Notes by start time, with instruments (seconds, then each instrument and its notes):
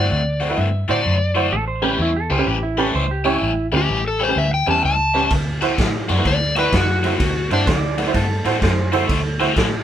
Already playing: overdriven electric guitar D3 A3 C4 F#4, electric slide guitar D5
0.11 fingered electric bass D2
0.40 overdriven electric guitar D3 A3 C4 F#4, honky-tonk piano F#4 C5
0.49 honky-tonk piano E4 F#4 B4
0.58 fingered electric bass G2, electric slide guitar E5
0.88 fingered electric bass A2, overdriven electric guitar D3 A3 C4 F#4, honky-tonk piano E4 F#4 C5, electric slide guitar D5
1.06 fingered electric bass F#2
1.35 overdriven electric guitar D3 A3 C4 F#4, honky-tonk piano E4 F#4 C5
1.52 fingered electric bass A1, electric slide guitar A4
1.68 electric slide guitar C5
1.82 overdriven electric guitar A2 G3 C#4 E4, honky-tonk piano C#4 G4 B4, electric slide guitar G4
1.99 fingered electric bass E2, electric slide guitar E4
2.16 electric slide guitar A4
2.30 fingered electric bass C#2, overdriven electric guitar A2 G3 C#4 E4, honky-tonk piano G4 B4, electric slide guitar C5
2.38 honky-tonk piano C#4 G4 B4
2.46 fingered electric bass A1, electric slide guitar G4
2.63 electric slide guitar E4
2.77 overdriven electric guitar A2 G3 C#4 E4, honky-tonk piano C#4 G4 B4, electric slide guitar A4
2.94 fingered electric bass C#2, electric slide guitar C5
3.11 electric slide guitar G4
3.25 overdriven electric guitar A2 G3 C#4 E4, honky-tonk piano C#4 G4 C#5, electric slide guitar E4
3.42 fingered electric bass A1
3.72 fingered electric bass D2, overdriven electric guitar A2 G3 C#4 E4, honky-tonk piano C#4 G4 B4
3.77 electric slide guitar G4
3.88 fingered electric bass A1
4.08 electric slide guitar A4
4.20 overdriven electric guitar A2 G3 C#4 E4, honky-tonk piano G4 C#5, electric slide guitar C5
4.28 honky-tonk piano C#4 G4 B4
4.36 fingered electric bass D2, electric slide guitar E5
4.54 electric slide guitar G5
4.67 fingered electric bass E2, overdriven electric guitar A2 G3 C#4 E4, honky-tonk piano C#4 G4 B4, electric slide guitar A5
4.84 fingered electric bass C#2, electric slide guitar A5
5.14 overdriven electric guitar A2 G3 C#4 E4, honky-tonk piano C#4 G4 B4
5.30 fingered electric bass D2, kick, ride
5.61 overdriven electric guitar D3 A3 C4 F#4, honky-tonk piano E4 F#4 C5, snare, ride
5.78 fingered electric bass A2, kick, snare, ride
6.08 fingered electric bass F#2, overdriven electric guitar D3 A3 C4 F#4, honky-tonk piano F#4 D5, snare, ride
6.18 honky-tonk piano E4 F#4 B4
6.25 fingered electric bass D2, electric slide guitar D5, kick, ride
6.56 overdriven electric guitar D3 A3 C4 F#4, honky-tonk piano E4 F#4 D5, electric slide guitar B4, snare, ride
6.73 fingered electric bass F#2, electric slide guitar F#4, kick, snare, ride
7.03 overdriven electric guitar D3 A3 C4 F#4, honky-tonk piano E4 F#4 C5, snare, ride
7.20 fingered electric bass D2, kick, ride
7.51 fingered electric bass G2, overdriven electric guitar D3 A3 C4 F#4, electric slide guitar D4, honky-tonk piano E4 F#4 C5, snare, ride
7.67 fingered electric bass D2, electric slide guitar D5, kick, snare, ride
7.98 overdriven electric guitar D3 A3 C4 F#4, honky-tonk piano F#4 B4, snare, ride
8.07 honky-tonk piano E4 F#4 C5
8.14 fingered electric bass G2, electric slide guitar A4, kick, ride
8.45 fingered electric bass A2, overdriven electric guitar D3 A3 C4 F#4, honky-tonk piano E4 F#4 C5, snare, ride
8.62 fingered electric bass F#2, electric slide guitar C5, kick, snare, ride
8.92 overdriven electric guitar D3 A3 C4 F#4, honky-tonk piano E4 F#4 C5, electric slide guitar A4, snare, ride
9.09 fingered electric bass D2, kick, ride
9.39 overdriven electric guitar D3 A3 C4 F#4, honky-tonk piano E4 F#4 C5, snare, ride
9.56 fingered electric bass A2, kick, snare, ride